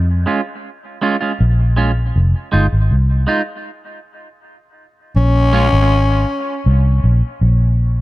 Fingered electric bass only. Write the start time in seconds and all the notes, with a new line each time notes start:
Already playing: F2
1.40 A#1
2.16 F1
2.53 G1
2.73 G#1
2.91 C2
5.16 A#1
5.73 G#1
6.66 C2
7.04 A#1
7.41 A#1